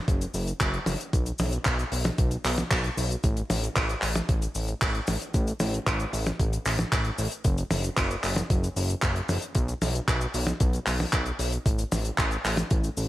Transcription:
0.08 analog synth bass F#1, kick, closed hi-hat, cabasa
0.21 closed hi-hat, cabasa
0.34 analog synth bass F#1, open hi-hat, cabasa
0.48 closed hi-hat, cabasa
0.60 analog synth bass F#1, kick, clap, closed hi-hat, cabasa
0.74 closed hi-hat
0.86 analog synth bass F#1, open hi-hat, high tom, cabasa
1.00 closed hi-hat, cabasa
1.13 analog synth bass B1, kick, closed hi-hat, cabasa
1.26 closed hi-hat, cabasa
1.38 analog synth bass B1, open hi-hat, high tom, cabasa
1.52 closed hi-hat, cabasa
1.65 analog synth bass B1, kick, clap, closed hi-hat, cabasa
1.79 closed hi-hat, cabasa
1.92 analog synth bass B1, open hi-hat, cabasa
2.05 closed hi-hat, high tom, cabasa
2.18 analog synth bass B1, kick, closed hi-hat, cabasa
2.31 closed hi-hat, cabasa
2.45 analog synth bass B1, clap, open hi-hat, cabasa
2.58 closed hi-hat, high tom, cabasa
2.71 analog synth bass B1, kick, clap, closed hi-hat, cabasa
2.84 closed hi-hat
2.97 analog synth bass B1, open hi-hat, cabasa
3.11 closed hi-hat, cabasa
3.23 analog synth bass A1, kick, closed hi-hat, cabasa
3.37 closed hi-hat, cabasa
3.50 analog synth bass A1, open hi-hat, high tom, cabasa
3.63 closed hi-hat, cabasa
3.76 analog synth bass A1, kick, clap, closed hi-hat, cabasa
3.89 closed hi-hat, cabasa
4.02 analog synth bass A1, clap, open hi-hat, cabasa
4.16 closed hi-hat, high tom, cabasa
4.29 analog synth bass A1, kick, closed hi-hat, cabasa
4.42 closed hi-hat, cabasa
4.55 analog synth bass A1, open hi-hat, cabasa
4.68 closed hi-hat, cabasa
4.81 analog synth bass A1, kick, clap, closed hi-hat, cabasa
4.95 closed hi-hat
5.07 analog synth bass A1, open hi-hat, high tom, cabasa
5.21 closed hi-hat, cabasa
5.34 analog synth bass A1, kick, closed hi-hat, cabasa
5.47 closed hi-hat, cabasa
5.60 analog synth bass A1, open hi-hat, high tom, cabasa
5.74 closed hi-hat, cabasa
5.87 analog synth bass A1, kick, clap, closed hi-hat, cabasa
6.00 closed hi-hat, cabasa
6.13 analog synth bass A1, open hi-hat, cabasa
6.26 closed hi-hat, high tom, cabasa
6.39 analog synth bass A1, kick, closed hi-hat, cabasa
6.53 closed hi-hat, cabasa
6.65 analog synth bass A1, clap, open hi-hat, cabasa
6.79 closed hi-hat, high tom, cabasa
6.92 analog synth bass A1, kick, clap, closed hi-hat, cabasa
7.05 closed hi-hat
7.18 analog synth bass A1, open hi-hat, cabasa
7.32 closed hi-hat, cabasa
7.44 analog synth bass F#1, kick, closed hi-hat, cabasa
7.58 closed hi-hat, cabasa
7.71 analog synth bass F#1, open hi-hat, high tom, cabasa
7.84 closed hi-hat, cabasa
7.97 analog synth bass F#1, kick, clap, closed hi-hat, cabasa
8.11 closed hi-hat, cabasa
8.23 analog synth bass F#1, clap, open hi-hat, cabasa
8.36 closed hi-hat, high tom, cabasa
8.50 analog synth bass F#1, kick, closed hi-hat, cabasa
8.63 closed hi-hat, cabasa
8.76 analog synth bass F#1, open hi-hat, cabasa
8.89 closed hi-hat, cabasa
9.02 analog synth bass F#1, kick, clap, closed hi-hat, cabasa
9.16 closed hi-hat
9.29 analog synth bass F#1, open hi-hat, high tom, cabasa
9.42 closed hi-hat, cabasa
9.55 analog synth bass B1, kick, closed hi-hat, cabasa
9.68 closed hi-hat, cabasa
9.82 analog synth bass B1, open hi-hat, high tom, cabasa
9.95 closed hi-hat, cabasa
10.08 analog synth bass B1, kick, clap, closed hi-hat, cabasa
10.21 closed hi-hat, cabasa
10.34 analog synth bass B1, open hi-hat, cabasa
10.47 closed hi-hat, high tom, cabasa
10.60 analog synth bass B1, kick, closed hi-hat, cabasa
10.73 closed hi-hat, cabasa
10.86 analog synth bass B1, clap, open hi-hat, cabasa
10.99 open hi-hat, high tom, cabasa
11.12 analog synth bass B1, kick, clap, closed hi-hat, cabasa
11.26 closed hi-hat, cabasa
11.39 analog synth bass B1, open hi-hat, cabasa
11.52 closed hi-hat, cabasa
11.66 analog synth bass A1, kick, closed hi-hat, cabasa
11.78 closed hi-hat, cabasa
11.92 analog synth bass A1, open hi-hat, high tom, cabasa
12.05 closed hi-hat, cabasa
12.18 analog synth bass A1, kick, clap, closed hi-hat, cabasa
12.31 closed hi-hat, cabasa
12.45 analog synth bass A1, clap, open hi-hat, cabasa
12.57 closed hi-hat, high tom, cabasa
12.70 analog synth bass A1, kick, closed hi-hat, cabasa
12.84 closed hi-hat, cabasa
12.97 analog synth bass A1, open hi-hat, cabasa

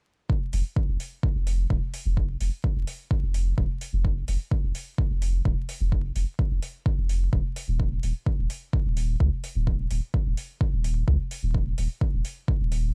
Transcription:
0.30 kick
0.53 sub bass F1, open hi-hat
0.76 kick
0.88 sub bass F1
1.00 open hi-hat
1.23 kick
1.35 sub bass F1
1.47 open hi-hat
1.70 sub bass D#1, kick
1.94 open hi-hat
2.05 sub bass F1
2.17 kick
2.41 sub bass F1, open hi-hat
2.64 kick
2.76 sub bass F1
2.87 open hi-hat
3.11 kick
3.23 sub bass F1
3.34 open hi-hat
3.58 sub bass D#1, kick
3.81 open hi-hat
3.93 sub bass F1
4.05 kick
4.28 sub bass F1, open hi-hat
4.52 kick
4.63 sub bass F1
4.75 open hi-hat
4.98 kick
5.10 sub bass F1
5.22 open hi-hat
5.45 sub bass D#1, kick
5.69 open hi-hat
5.80 sub bass F1
5.92 kick
6.16 sub bass F1, open hi-hat
6.39 kick
6.51 sub bass F1
6.62 open hi-hat
6.86 kick
6.98 sub bass F1
7.09 open hi-hat
7.33 sub bass D#1, kick
7.56 open hi-hat
7.68 sub bass D#1
7.80 kick
8.03 sub bass D#1, open hi-hat
8.26 kick
8.38 sub bass D#1
8.50 open hi-hat
8.73 kick
8.85 sub bass D#1
8.97 open hi-hat
9.20 sub bass C#2, kick
9.44 open hi-hat
9.55 sub bass D#1
9.67 kick
9.91 sub bass D#1, open hi-hat
10.14 kick
10.26 sub bass D#1
10.37 open hi-hat
10.61 kick
10.73 sub bass D#1
10.84 open hi-hat
11.08 sub bass C#2, kick
11.31 open hi-hat
11.43 sub bass D#1
11.55 kick
11.78 sub bass D#1, open hi-hat
12.01 kick
12.13 sub bass D#1
12.25 open hi-hat
12.48 kick
12.60 sub bass D#1
12.72 open hi-hat

